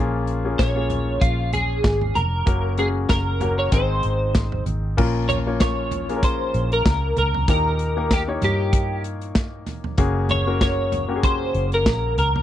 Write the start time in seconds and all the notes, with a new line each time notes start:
Already playing: A#1 A#2 F3 A#3 C#4 F4 G#4
0.27 closed hi-hat
0.45 A#3 C#4 F4 G#4
0.59 A#1 C#5, kick, snare, closed hi-hat
0.76 A#3 C#4 F4 G#4
0.90 closed hi-hat, floor tom
1.21 A#1 F4, kick, closed hi-hat
1.53 G#4, closed hi-hat, floor tom
1.84 G#1, kick, snare, closed hi-hat
2.02 floor tom
2.15 F1 A#4, closed hi-hat, floor tom
2.46 F#1 C#3 A#3 C#4 F#4 A#4, kick, closed hi-hat
2.78 A#3 C#4 F#4 G#4, closed hi-hat
3.09 F#1 A#4, kick, snare, closed hi-hat
3.41 A#3 C#4 F#4 A#4, closed hi-hat, floor tom
3.59 C#5
3.72 G#1 G#2 D#3 C4 D#4 G#4 C5, kick, closed hi-hat
4.03 G#1, closed hi-hat
4.35 kick, snare, closed hi-hat
4.52 floor tom
4.66 G#1, closed hi-hat, floor tom
4.97 A#1 A#2 F3 A#3 C#4 F4 A#4, kick, crash
5.29 C#5, closed hi-hat, floor tom
5.47 A#3 C#4 F4 C#5
5.60 C#5, kick, snare, closed hi-hat
5.91 closed hi-hat, floor tom
6.09 A#3 C#4 F4 G#4, closed hi-hat
6.16 A#4
6.23 C5, kick, closed hi-hat
6.54 A#1, closed hi-hat
6.72 A#4, closed hi-hat
6.86 C#2, kick, snare, closed hi-hat
7.17 C#2 A#4, closed hi-hat, floor tom
7.34 floor tom
7.48 D#2 A#2 A#3 D#4 G4 A#4, kick, closed hi-hat
7.79 closed hi-hat
7.97 A#3 D#4 G4 A#4
8.11 G4, kick, snare, closed hi-hat
8.28 A#3 D#4 G4 C#5
8.42 G2 G4, closed hi-hat, floor tom
8.73 kick, closed hi-hat
9.04 closed hi-hat
9.22 closed hi-hat
9.35 kick, snare, closed hi-hat
9.66 snare, closed hi-hat, floor tom
9.84 floor tom
9.98 F#1 C#3 A#3 C#4 F#4 G#4, kick, closed hi-hat
10.29 C#5, closed hi-hat, floor tom
10.47 A#3 C#4 F#4 A#4
10.61 C#5, kick, snare, closed hi-hat
10.92 closed hi-hat, floor tom
11.08 A#3 C#4 F#4 G4
11.16 G#4
11.23 C5, kick, closed hi-hat
11.54 F#1, closed hi-hat
11.72 A#4, closed hi-hat
11.86 A#1, kick, snare, closed hi-hat
12.17 C#2 A#4, closed hi-hat, floor tom
12.36 floor tom